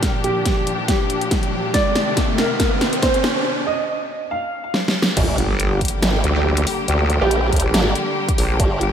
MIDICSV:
0, 0, Header, 1, 9, 480
1, 0, Start_track
1, 0, Key_signature, -2, "minor"
1, 0, Tempo, 428571
1, 29, Time_signature, 4, 2, 24, 8
1, 9993, End_track
2, 0, Start_track
2, 0, Title_t, "Grand piano"
2, 0, Program_c, 0, 0
2, 0, Note_on_c, 0, 70, 86
2, 181, Note_off_c, 0, 70, 0
2, 269, Note_on_c, 0, 67, 91
2, 901, Note_off_c, 0, 67, 0
2, 988, Note_on_c, 0, 67, 86
2, 1861, Note_off_c, 0, 67, 0
2, 1948, Note_on_c, 0, 74, 98
2, 2581, Note_off_c, 0, 74, 0
2, 2667, Note_on_c, 0, 70, 91
2, 3301, Note_off_c, 0, 70, 0
2, 3387, Note_on_c, 0, 72, 95
2, 4020, Note_off_c, 0, 72, 0
2, 4107, Note_on_c, 0, 75, 91
2, 4740, Note_off_c, 0, 75, 0
2, 4828, Note_on_c, 0, 77, 92
2, 5701, Note_off_c, 0, 77, 0
2, 9993, End_track
3, 0, Start_track
3, 0, Title_t, "Synth stab"
3, 0, Program_c, 1, 62
3, 7118, Note_on_c, 1, 67, 98
3, 7119, Note_on_c, 1, 55, 86
3, 7119, Note_on_c, 1, 62, 80
3, 7252, Note_off_c, 1, 55, 0
3, 7252, Note_off_c, 1, 62, 0
3, 7252, Note_off_c, 1, 67, 0
3, 8078, Note_on_c, 1, 55, 106
3, 8078, Note_on_c, 1, 62, 98
3, 8078, Note_on_c, 1, 67, 119
3, 9993, Note_off_c, 1, 55, 0
3, 9993, Note_off_c, 1, 62, 0
3, 9993, Note_off_c, 1, 67, 0
3, 9993, End_track
4, 0, Start_track
4, 0, Title_t, "String section"
4, 0, Program_c, 2, 48
4, 0, Note_on_c, 2, 46, 76
4, 0, Note_on_c, 2, 53, 65
4, 0, Note_on_c, 2, 62, 72
4, 0, Note_on_c, 2, 67, 85
4, 1910, Note_off_c, 2, 46, 0
4, 1910, Note_off_c, 2, 53, 0
4, 1948, Note_on_c, 2, 48, 80
4, 1949, Note_on_c, 2, 51, 74
4, 3824, Note_off_c, 2, 62, 0
4, 3824, Note_off_c, 2, 67, 0
4, 3849, Note_off_c, 2, 48, 0
4, 3850, Note_off_c, 2, 51, 0
4, 5788, Note_on_c, 2, 50, 77
4, 5789, Note_on_c, 2, 55, 70
4, 5789, Note_on_c, 2, 58, 70
4, 5789, Note_on_c, 2, 67, 89
4, 9993, Note_off_c, 2, 50, 0
4, 9993, Note_off_c, 2, 55, 0
4, 9993, Note_off_c, 2, 58, 0
4, 9993, Note_off_c, 2, 67, 0
4, 9993, End_track
5, 0, Start_track
5, 0, Title_t, "Wobble bass"
5, 0, Program_c, 3, 39
5, 6029, Note_on_c, 3, 31, 95
5, 6491, Note_off_c, 3, 31, 0
5, 6988, Note_on_c, 3, 38, 96
5, 7451, Note_off_c, 3, 38, 0
5, 7708, Note_on_c, 3, 38, 100
5, 8058, Note_off_c, 3, 38, 0
5, 8559, Note_on_c, 3, 34, 88
5, 8651, Note_off_c, 3, 34, 0
5, 9388, Note_on_c, 3, 34, 96
5, 9611, Note_off_c, 3, 34, 0
5, 9869, Note_on_c, 3, 31, 93
5, 9993, Note_off_c, 3, 31, 0
5, 9993, End_track
6, 0, Start_track
6, 0, Title_t, "Wobble bass"
6, 0, Program_c, 4, 39
6, 5790, Note_on_c, 4, 31, 94
6, 6012, Note_off_c, 4, 31, 0
6, 6749, Note_on_c, 4, 32, 100
6, 6971, Note_off_c, 4, 32, 0
6, 8079, Note_on_c, 4, 34, 98
6, 8411, Note_off_c, 4, 34, 0
6, 8429, Note_on_c, 4, 38, 98
6, 8539, Note_off_c, 4, 38, 0
6, 8668, Note_on_c, 4, 32, 94
6, 8891, Note_off_c, 4, 32, 0
6, 9629, Note_on_c, 4, 31, 98
6, 9851, Note_off_c, 4, 31, 0
6, 9993, End_track
7, 0, Start_track
7, 0, Title_t, "Impact"
7, 0, Program_c, 5, 103
7, 5789, Note_on_c, 5, 60, 78
7, 7709, Note_off_c, 5, 60, 0
7, 9993, End_track
8, 0, Start_track
8, 0, Title_t, "Riser"
8, 0, Program_c, 6, 103
8, 0, Note_on_c, 6, 60, 77
8, 3869, Note_off_c, 6, 60, 0
8, 9993, End_track
9, 0, Start_track
9, 0, Title_t, "Drums"
9, 29, Note_on_c, 9, 36, 93
9, 29, Note_on_c, 9, 38, 58
9, 29, Note_on_c, 9, 42, 78
9, 141, Note_off_c, 9, 36, 0
9, 141, Note_off_c, 9, 38, 0
9, 141, Note_off_c, 9, 42, 0
9, 270, Note_on_c, 9, 42, 52
9, 382, Note_off_c, 9, 42, 0
9, 509, Note_on_c, 9, 36, 92
9, 510, Note_on_c, 9, 38, 57
9, 510, Note_on_c, 9, 42, 78
9, 621, Note_off_c, 9, 36, 0
9, 622, Note_off_c, 9, 38, 0
9, 622, Note_off_c, 9, 42, 0
9, 750, Note_on_c, 9, 42, 52
9, 862, Note_off_c, 9, 42, 0
9, 989, Note_on_c, 9, 36, 98
9, 990, Note_on_c, 9, 38, 69
9, 990, Note_on_c, 9, 42, 83
9, 1101, Note_off_c, 9, 36, 0
9, 1102, Note_off_c, 9, 38, 0
9, 1102, Note_off_c, 9, 42, 0
9, 1230, Note_on_c, 9, 42, 54
9, 1342, Note_off_c, 9, 42, 0
9, 1360, Note_on_c, 9, 42, 63
9, 1469, Note_off_c, 9, 42, 0
9, 1469, Note_on_c, 9, 36, 99
9, 1469, Note_on_c, 9, 38, 68
9, 1469, Note_on_c, 9, 42, 76
9, 1581, Note_off_c, 9, 36, 0
9, 1581, Note_off_c, 9, 38, 0
9, 1581, Note_off_c, 9, 42, 0
9, 1600, Note_on_c, 9, 42, 36
9, 1712, Note_off_c, 9, 42, 0
9, 1949, Note_on_c, 9, 36, 96
9, 1950, Note_on_c, 9, 38, 70
9, 1950, Note_on_c, 9, 42, 76
9, 2061, Note_off_c, 9, 36, 0
9, 2062, Note_off_c, 9, 38, 0
9, 2062, Note_off_c, 9, 42, 0
9, 2190, Note_on_c, 9, 38, 73
9, 2190, Note_on_c, 9, 42, 51
9, 2302, Note_off_c, 9, 38, 0
9, 2302, Note_off_c, 9, 42, 0
9, 2429, Note_on_c, 9, 36, 96
9, 2429, Note_on_c, 9, 38, 75
9, 2429, Note_on_c, 9, 42, 79
9, 2541, Note_off_c, 9, 36, 0
9, 2541, Note_off_c, 9, 38, 0
9, 2541, Note_off_c, 9, 42, 0
9, 2669, Note_on_c, 9, 38, 81
9, 2669, Note_on_c, 9, 42, 53
9, 2781, Note_off_c, 9, 38, 0
9, 2781, Note_off_c, 9, 42, 0
9, 2909, Note_on_c, 9, 36, 101
9, 2909, Note_on_c, 9, 38, 84
9, 2909, Note_on_c, 9, 42, 86
9, 3021, Note_off_c, 9, 36, 0
9, 3021, Note_off_c, 9, 38, 0
9, 3021, Note_off_c, 9, 42, 0
9, 3149, Note_on_c, 9, 38, 84
9, 3149, Note_on_c, 9, 42, 53
9, 3261, Note_off_c, 9, 38, 0
9, 3261, Note_off_c, 9, 42, 0
9, 3279, Note_on_c, 9, 42, 61
9, 3388, Note_off_c, 9, 42, 0
9, 3388, Note_on_c, 9, 36, 96
9, 3388, Note_on_c, 9, 38, 88
9, 3388, Note_on_c, 9, 42, 78
9, 3500, Note_off_c, 9, 36, 0
9, 3500, Note_off_c, 9, 38, 0
9, 3500, Note_off_c, 9, 42, 0
9, 3519, Note_on_c, 9, 42, 37
9, 3627, Note_on_c, 9, 38, 88
9, 3631, Note_off_c, 9, 42, 0
9, 3739, Note_off_c, 9, 38, 0
9, 5309, Note_on_c, 9, 38, 69
9, 5421, Note_off_c, 9, 38, 0
9, 5468, Note_on_c, 9, 38, 83
9, 5580, Note_off_c, 9, 38, 0
9, 5628, Note_on_c, 9, 38, 105
9, 5740, Note_off_c, 9, 38, 0
9, 5788, Note_on_c, 9, 42, 83
9, 5788, Note_on_c, 9, 49, 108
9, 5789, Note_on_c, 9, 36, 115
9, 5900, Note_off_c, 9, 42, 0
9, 5900, Note_off_c, 9, 49, 0
9, 5901, Note_off_c, 9, 36, 0
9, 6028, Note_on_c, 9, 42, 55
9, 6140, Note_off_c, 9, 42, 0
9, 6268, Note_on_c, 9, 42, 80
9, 6380, Note_off_c, 9, 42, 0
9, 6509, Note_on_c, 9, 36, 65
9, 6509, Note_on_c, 9, 42, 53
9, 6552, Note_off_c, 9, 42, 0
9, 6552, Note_on_c, 9, 42, 68
9, 6589, Note_off_c, 9, 42, 0
9, 6589, Note_on_c, 9, 42, 84
9, 6621, Note_off_c, 9, 36, 0
9, 6701, Note_off_c, 9, 42, 0
9, 6748, Note_on_c, 9, 38, 127
9, 6748, Note_on_c, 9, 42, 85
9, 6860, Note_off_c, 9, 38, 0
9, 6860, Note_off_c, 9, 42, 0
9, 6988, Note_on_c, 9, 42, 59
9, 7100, Note_off_c, 9, 42, 0
9, 7358, Note_on_c, 9, 42, 83
9, 7468, Note_on_c, 9, 46, 98
9, 7470, Note_off_c, 9, 42, 0
9, 7580, Note_off_c, 9, 46, 0
9, 7708, Note_on_c, 9, 42, 83
9, 7820, Note_off_c, 9, 42, 0
9, 7948, Note_on_c, 9, 42, 53
9, 8060, Note_off_c, 9, 42, 0
9, 8188, Note_on_c, 9, 42, 83
9, 8300, Note_off_c, 9, 42, 0
9, 8428, Note_on_c, 9, 42, 54
9, 8429, Note_on_c, 9, 36, 62
9, 8472, Note_off_c, 9, 42, 0
9, 8472, Note_on_c, 9, 42, 69
9, 8508, Note_off_c, 9, 42, 0
9, 8508, Note_on_c, 9, 42, 84
9, 8541, Note_off_c, 9, 36, 0
9, 8620, Note_off_c, 9, 42, 0
9, 8669, Note_on_c, 9, 38, 127
9, 8669, Note_on_c, 9, 42, 86
9, 8781, Note_off_c, 9, 38, 0
9, 8781, Note_off_c, 9, 42, 0
9, 8909, Note_on_c, 9, 42, 57
9, 9021, Note_off_c, 9, 42, 0
9, 9280, Note_on_c, 9, 36, 109
9, 9280, Note_on_c, 9, 42, 85
9, 9388, Note_on_c, 9, 46, 99
9, 9392, Note_off_c, 9, 36, 0
9, 9392, Note_off_c, 9, 42, 0
9, 9500, Note_off_c, 9, 46, 0
9, 9628, Note_on_c, 9, 42, 81
9, 9629, Note_on_c, 9, 36, 120
9, 9740, Note_off_c, 9, 42, 0
9, 9741, Note_off_c, 9, 36, 0
9, 9869, Note_on_c, 9, 42, 53
9, 9981, Note_off_c, 9, 42, 0
9, 9993, End_track
0, 0, End_of_file